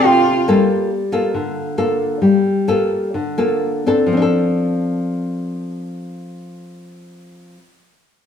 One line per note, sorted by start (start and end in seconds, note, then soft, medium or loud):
0.00 0.46 C3 medium
0.00 0.44 C4 soft
0.00 0.45 D4 soft
0.00 0.45 A4 medium
0.04 0.48 F4 medium
0.04 0.65 G5 medium
0.48 1.32 G3 medium
0.48 0.90 A#3 medium
0.48 0.91 F4 medium
0.48 0.91 A4 medium
1.12 1.74 A#3 medium
1.12 1.74 F4 soft
1.12 1.74 A4 medium
1.34 2.20 D3 medium
1.78 2.38 A#3 soft
1.78 2.38 F4 soft
1.78 2.38 A4 medium
2.22 3.11 G3 medium
2.68 3.14 A#3 medium
2.68 3.14 F4 soft
2.68 3.14 A4 medium
3.14 4.09 D3 medium
3.38 3.82 A#3 medium
3.38 3.82 F4 soft
3.38 3.83 A4 medium
3.86 4.11 C4 soft
3.86 4.16 D4 medium
3.86 4.21 A4 medium
4.06 7.56 F3 medium
4.13 7.63 C4 soft
4.17 7.67 D4 medium
4.22 7.72 A4 medium